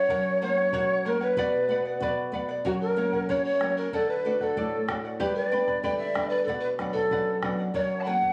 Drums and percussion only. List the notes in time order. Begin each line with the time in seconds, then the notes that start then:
0.09 bombo low
0.73 bombo low
1.37 bombo low
2.01 bombo low
2.33 bombo low
2.65 bombo low
3.13 bombo low
3.29 bombo low
3.61 bombo rim
3.93 bombo low
4.41 bombo low
4.57 bombo low
4.89 bombo rim, bombo low
5.20 bombo low
5.67 bombo low
5.84 bombo low
6.15 bombo rim, bombo low
6.47 bombo low
6.79 bombo rim, bombo low
6.95 bombo low
7.11 bombo low
7.43 bombo rim, bombo low
7.74 bombo low
8.22 bombo low